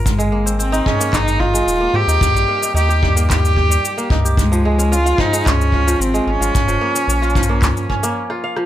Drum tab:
SH |x-x---x-x-x---x-x-x---x-x-----x-|x-x---x-x-x---x-x-x---x-x-x---x-|x-x---x-x-x---x-x-x---x-x-x---x-|x-x---x-x-xxxx--x-x---x---------|
CP |----------------x---------------|----------------x---------------|----------------x---------------|----------------x---------------|
SD |--------------------------------|--------------------------------|--------------------------------|--------------------------r---r-|
BD |o-----------o---o---o-----------|o-----------o---o---o-------o---|o-----------o---o---o-----------|o-----------o---o---o-----------|